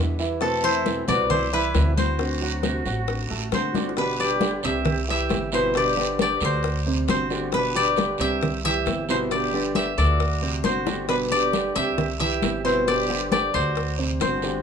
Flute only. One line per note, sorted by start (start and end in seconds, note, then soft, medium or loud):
0.41 0.62 C4 medium
0.63 1.05 E4 medium
1.07 1.28 F#4 medium
1.30 1.51 E4 medium
1.52 1.93 E4 medium
1.97 3.49 F#4 medium
3.54 3.95 F#4 medium
3.98 4.18 D4 medium
4.19 4.61 G4 medium
4.64 5.05 G4 medium
5.09 5.50 G4 medium
5.54 5.74 E4 medium
5.75 6.17 G4 medium
6.20 6.40 G4 medium
6.43 6.81 F#4 medium
7.08 7.50 F#4 medium
7.53 7.74 D4 medium
7.74 8.16 G4 medium
8.18 8.60 G4 medium
8.64 9.05 G4 medium
9.08 9.14 E4 medium
9.31 9.72 G4 medium
9.75 9.96 G4 medium
9.98 10.61 F#4 medium
10.66 11.06 F#4 medium
11.09 11.15 D4 medium
11.33 11.73 G4 medium
11.77 12.18 G4 medium
12.21 12.62 G4 medium
12.66 12.86 E4 medium
12.88 13.29 G4 medium
13.31 13.52 G4 medium
13.54 13.96 F#4 medium
14.21 14.62 F#4 medium